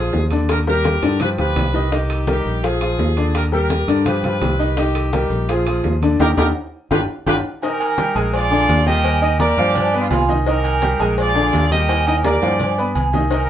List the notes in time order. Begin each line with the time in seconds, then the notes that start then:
Already playing: F3 F4 G#4
0.13 D#2, high bongo, low bongo, high conga, low timbale, maracas
0.31 D3 D4 D5, high conga, high timbale, maracas
0.49 G4 A#4, high bongo, high conga, high timbale, maracas
0.67 G3 G4 A#4, high bongo, high conga, maracas
0.84 high bongo, high conga, high timbale, low timbale, maracas
1.03 G2 D3 D4 D5, low bongo, high timbale, maracas
1.20 F3 F4 G4 B4, low bongo, high conga, low conga, high timbale, maracas
1.38 D2 F3 F4 G4 B4, low bongo, high conga, high timbale, maracas
1.56 C2, low bongo, high conga, high timbale, low timbale, maracas
1.74 D#3 D#4 D#5, low bongo, maracas
1.92 D#3 D#4 G4 D#5, high bongo, high conga, high timbale, maracas
2.10 high bongo, high conga, high timbale, maracas
2.27 G3 D#4 G4 A#4, high bongo, high conga, high timbale, low timbale, maracas
2.45 A#1, high bongo, high conga, maracas
2.63 F3 F4 G#4, high bongo, high conga, high timbale, maracas
2.81 F3 F4 G#4, high bongo, high conga, high timbale, maracas
2.98 D#2, high bongo, low bongo, high conga, low timbale, maracas
3.17 D3 D4 D5, high timbale, maracas
3.35 G4 A#4, high bongo, high conga, high timbale, maracas
3.52 G3 G4 A#4, high bongo, high conga, maracas
3.70 high bongo, high conga, high timbale, low timbale, maracas
3.88 G2 D3 D4 D5, high bongo, high timbale, maracas
4.06 F3 F4 G4 B4, high bongo, high conga, low conga, high timbale, maracas
4.23 F3 F4 G4 B4, high bongo, high conga, low conga, high timbale, maracas
4.41 C2, high bongo, low bongo, high conga, high timbale, low timbale, maracas
4.59 D#3 D#4 D#5, maracas
4.77 D#3 D#4 G4 D#5, high bongo, high conga, high timbale, maracas
4.95 high bongo, high conga, high timbale, maracas
5.13 G3 D#4 G4 A#4, high bongo, high conga, high timbale, low timbale, maracas
5.30 A#1, high bongo, high conga, maracas
5.49 F3 F4 G#4, high bongo, high conga, high timbale, maracas
5.67 F3 F4 G#4, high bongo, high conga, high timbale, maracas
5.84 D#2, high bongo, low bongo, high conga, low timbale, maracas
6.02 D3 D4 D5, high conga, high timbale, maracas
6.19 D#2 D4 D#4 G4 A#4, high bongo, high conga, high timbale, maracas
6.37 D#2 D4 D#4 G4 A#4, high bongo, high conga, high timbale, maracas
6.91 G1 D4 F4 G4 B4, high bongo, high conga, high timbale, maracas
7.26 G1 D4 F4 G4 B4, high bongo, high conga, high timbale, maracas
7.62 D#3 D#4 G4 A#4 D#5, cowbell, high conga, low agogo, maracas
7.80 cowbell, high conga, low agogo, maracas
7.98 G3 G4 G5, cowbell, high conga, low timbale, maracas
8.15 A#1 G#3 G#4 G#5, cowbell, maracas
8.34 F4 G#4 D5, cowbell, high conga, low agogo, maracas
8.51 D3 D4 D5, high conga, low agogo
8.68 D#2, cowbell, high conga, low timbale, maracas
8.86 G3 G4 A#4 D#5 G5, high conga
9.04 cowbell, high conga, low agogo, maracas
9.22 D#4 D#5 D#6, high conga, low agogo, maracas
9.40 A#3 G4 A#4 D5 A#5, cowbell, high conga, low timbale, maracas
9.57 G2 F3 F4 F5, cowbell, high conga, low agogo, maracas
9.75 D4, cowbell, high conga, low conga, low agogo, maracas
9.93 B3 B4 B5, high conga, maracas
10.02 F4
10.10 C2 F4, cowbell, high conga, low timbale, low agogo, maracas
10.29 D#3 D#4 D#5, high conga, low agogo, maracas
10.46 D#3 D#4 G4 A#4 D#5, cowbell, low agogo, maracas
10.64 cowbell, high conga, low agogo, maracas
10.82 G3 G4 G5, cowbell, high conga, low timbale, maracas
10.99 A#1 G#3 G#4 G#5, cowbell, maracas
11.18 F4 G#4 D5, cowbell, high conga, low agogo, maracas
11.35 D3 D4 D5, high conga, low agogo, maracas
11.53 D#2, cowbell, high conga, low timbale, maracas
11.71 G3 G4 A#4 D#5 G5, high conga
11.89 cowbell, high timbale, low agogo, maracas
12.07 D#4 D#5 D#6, high conga, high timbale, low agogo, maracas
12.24 A#3 G4 A#4 D5 A#5, cowbell, high conga, low timbale, maracas
12.42 G2 F3 F4 F5, cowbell, high conga, high timbale, low agogo, maracas
12.60 cowbell, high conga, low conga, low agogo, maracas
12.78 B3 B4 B5, high conga, maracas
12.95 C2, cowbell, high conga, low agogo, maracas
13.13 D#3 D#4 D#5, high conga, low timbale, low agogo, maracas
13.30 D#3 D#4 G4 A#4 D#5, cowbell, low agogo, maracas